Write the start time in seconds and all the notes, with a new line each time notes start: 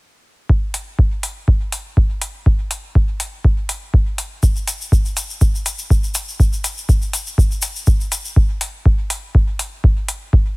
0.49 kick
0.74 open hi-hat
0.99 kick
1.23 open hi-hat
1.48 kick
1.72 open hi-hat
1.97 kick
2.22 open hi-hat
2.46 kick
2.71 open hi-hat
2.95 kick
3.20 open hi-hat
3.44 kick
3.69 open hi-hat
3.94 kick
4.18 open hi-hat
4.43 kick, shaker
4.56 shaker
4.67 open hi-hat, shaker
4.81 shaker
4.92 kick, shaker
5.05 shaker
5.17 open hi-hat, shaker
5.30 shaker
5.41 kick, shaker
5.55 shaker
5.66 open hi-hat, shaker
5.79 shaker
5.90 kick, shaker
6.03 shaker
6.15 open hi-hat, shaker
6.28 shaker
6.40 kick, shaker
6.53 shaker
6.64 open hi-hat, shaker
6.78 shaker
6.89 kick, shaker
7.02 shaker
7.13 open hi-hat, shaker
7.26 shaker
7.38 kick, shaker
7.51 shaker
7.62 open hi-hat, shaker
7.76 shaker
7.87 kick, shaker
8.01 shaker
8.12 open hi-hat, shaker
8.25 shaker
8.36 kick
8.61 open hi-hat
8.86 kick
9.10 open hi-hat
9.35 kick
9.59 open hi-hat
9.84 kick
10.08 open hi-hat
10.33 kick